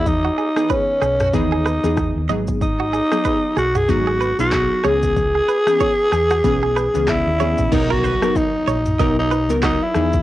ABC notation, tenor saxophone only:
X:1
M:4/4
L:1/16
Q:"Swing 16ths" 1/4=94
K:B
V:1 name="Tenor saxophone"
D4 C4 D6 z2 | D6 F G F3 F3 G2- | G12 E4 | D F3 D4 D D3 D E3 |]